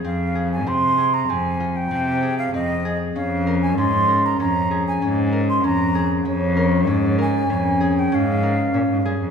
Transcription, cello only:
\new Staff \with { instrumentName = "Cello" } { \clef bass \time 5/4 \key des \lydian \tempo 4 = 96 f,4 c4 f,4 c4 f,4 | f,4 aes,4 f,4 aes,4 f,4 | f,4 aes,4 f,4 aes,4 bes,16 aes,16 g,16 f,16 | }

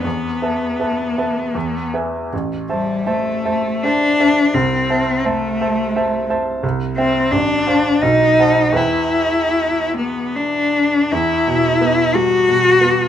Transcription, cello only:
\new Staff \with { instrumentName = "Cello" } { \time 3/4 \key a \minor \tempo 4 = 83 b2~ b8 r8 | r8 g8 a4 d'4 | c'4 a4. r8 | \key e \minor r8 c'8 d'4 dis'4 |
e'4. b8 d'4 | e'4. fis'4. | }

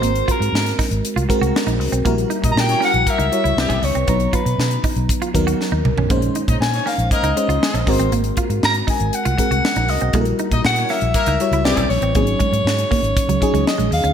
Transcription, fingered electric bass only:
\new Staff \with { instrumentName = "Fingered electric bass" } { \clef bass \time 4/4 \key aes \mixolydian \tempo 4 = 119 aes,,8 r16 aes,16 aes,8 r16 aes,,16 r16 c,16 r16 c,16 r16 bes,,16 c,16 ces,16 | bes,,8 r16 bes,16 bes,8 r16 bes,,16 r16 des,16 r16 des,16 c,16 b,,16 des,16 c,16 | b,,8 r16 b,16 b,8 r16 b,,16 r8 dis,8 r16 dis,16 c,16 b,,16 | bes,,8 r16 bes,16 bes,8 r16 bes,,16 r16 des,16 r16 des,16 r16 bes,,16 aes,,16 a,,16 |
aes,,8 r16 aes,16 aes,8 r16 aes,,16 r16 c,16 r16 c,16 r16 bes,,16 c,16 ces,16 | bes,,8 r16 bes,16 bes,8 r16 bes,,16 r16 des,16 r16 des,16 c,16 b,,16 bes,,16 a,,16 | aes,,8 r16 aes,16 aes,8 r16 aes,,16 r16 des,16 r16 des,16 r16 bes,,16 ees,16 d,16 | }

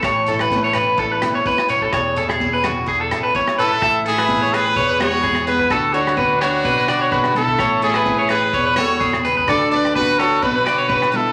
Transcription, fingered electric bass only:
\new Staff \with { instrumentName = "Fingered electric bass" } { \clef bass \time 4/4 \key a \major \tempo 4 = 127 a,,2 a,,8 r4. | e,,2 e,,8 r4. | a,,2 e,,8 e,4. | d,2 b,,8 b,4. |
a,,2 e,,8 e,4. | d,2 b,,8 b,4. | }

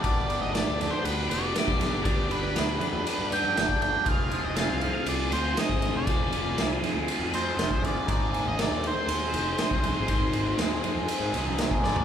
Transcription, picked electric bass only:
\new Staff \with { instrumentName = "Picked electric bass" } { \clef bass \time 4/4 \tempo 4 = 119 g,,8. g,,8 d,8 r16 d,8 f,,8 r16 b,,8 g,,16~ | g,,8 g,,8 d,8 r16 f,16 r16 g,8. g,,16 r16 g,,16 r16 | f,,8. f,,8 c,8 r16 c,8 d,8 r16 aes,,8 f,,16~ | f,,8 f,,8 c,8 r16 d,16 r16 f,8. f,,16 r16 g,,16 r16 |
aes,,8. aes,,8 ees,8 r16 ees,8 f,,8 r16 c,8 aes,,16~ | aes,,8 aes,,8 ees,8 r16 f,16 r16 aes,16 c,8 b,,8 aes,,8 | }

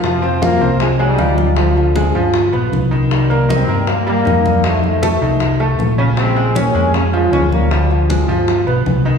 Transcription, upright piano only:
\new Staff \with { instrumentName = "Upright piano" } { \time 4/4 \key f \minor \tempo 4 = 157 r8 <c' c''>8 <f' f''>8 <c' c''>4 <aes aes'>8 <f' f''>4 | <f f'>4 <aes aes'>8 <f f'>4 <b b'>4 <dis dis'>8~ | <dis dis'>8 <bes bes'>8 <ees' ees''>8 <bes bes'>4 <g g'>8 <ees' ees''>4 | <ees ees'>4 <a a'>8 <ees ees'>4 <a a'>4 <des des'>8~ |
<des des'>8 <aes aes'>8 <des' des''>8 <aes aes'>4 <f f'>8 <des' des''>4 | <f f'>4 <aes aes'>8 <f f'>4 <b b'>4 <ees ees'>8 | }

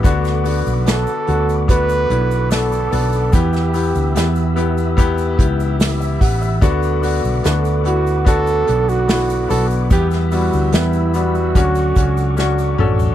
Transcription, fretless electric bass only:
\new Staff \with { instrumentName = "Fretless electric bass" } { \clef bass \time 4/4 \key d \major \tempo 4 = 73 d,8. b,,8 r16 d,4 b,,4 b,,8 | e,8. d,16 e,4. cis,4 a,,8 | d,8. b,,16 d,4. b,,4 b,,8 | e,8. d,16 e,4 d,8 cis,4 a,,8 | }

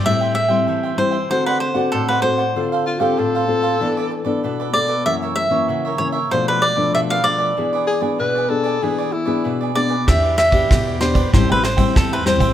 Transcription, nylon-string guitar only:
\new Staff \with { instrumentName = "Nylon-string guitar" } { \time 4/4 \key a \minor \tempo 4 = 96 << { <g c' e'>8 r16 <g c' e'>8. <g c' e'>16 r16 <c' fis' a'>8. <c' fis' a'>8. <c' fis' a'>16 r16 | <c' f' a'>8. <c' f' a'>8. <c' f' a'>8 <b d' a'>8. <b d' a'>8. <b d' a'>16 r16 | <e ais cis'>8. <e ais cis'>8. <e ais cis'>16 r16 <f a d'>8. <f a d'>8. <f a d'>8 | <b d' gis'>8 r16 <b d' gis'>8. <b d' gis'>8 <b d' gis'>8 r16 <b d' gis'>8. <b d' gis'>16 r16 |
<b d' g'>8. <b d' g'>8. <b d' g'>16 r16 <g c' e'>8 r16 <g c' e'>8. <g c' e'>8 | } \\ { a,4 e4 d4 a,4 | d4 a,4 e4 b,4 | fis,4 cis4 b,4 b,4 | e4 b,4 e4 b,4 |
e4 b,4 a,4 e4 | } >> }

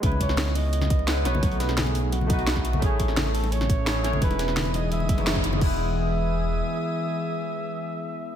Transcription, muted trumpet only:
\new Staff \with { instrumentName = "Muted trumpet" } { \time 4/4 \key e \major \tempo 4 = 172 r8 cis''4 dis''4. r8 cis''8~ | cis''8 b'8 gis'4 fis'2 | gis'4. a'8 cis''2 | b'4. dis''8 e''4. r8 |
e''1~ | e''1 | }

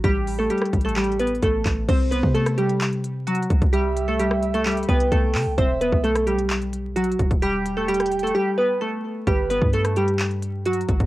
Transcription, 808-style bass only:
\new Staff \with { instrumentName = "808-style bass" } { \clef bass \time 4/4 \key c \lydian \tempo 4 = 130 a,,4 r8 a,,4. a,,8 a,,8 | c,8. c2~ c8. c,16 c,16~ | c,2~ c,8 c,8 c,8 c16 c,16 | e,,8. b,,2~ b,,8. e,,16 e,,16~ |
e,,2 r2 | g,,8. g,2~ g,8. g,,16 g,,16 | }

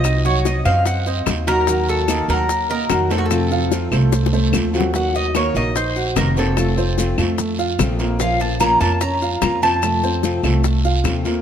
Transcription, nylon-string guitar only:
\new Staff \with { instrumentName = "Nylon-string guitar" } { \time 4/4 \key ees \dorian \tempo 4 = 147 <c' ees' ges'>4 <c' ees' ges'>4 r4 <c' ees' ges'>8 <ees' ges'>8 | <ees bes ees' ges'>4 <ees bes ees' ges'>4 r4 <ees bes ees' ges'>8 <bes ees' ges'>8 | <c f a c' f'>4 <f a c' f'>4 r4 <f a c' f'>8 <f a c' f'>8 | <ees bes ees' ges'>8 <bes ees' ges'>8 <ees bes ees' ges'>8 <bes ees' ges'>8 r4 <ees bes ees' ges'>8 <bes ees' ges'>8 |
<c f a c' f'>8 <a c' f'>8 <c f a c' f'>8 <a c' f'>8 r4 <c f a c' f'>8 <a c' f'>8 | <f bes des' f'>8 <bes des' f'>8 <f bes des' f'>8 <bes des' f'>8 r4 <f bes des' f'>8 <bes des' f'>8 | <c f a c' f'>8 <a c' f'>8 <c f a c' f'>8 <a c' f'>8 r4 <c f a c' f'>8 <a c' f'>8 | }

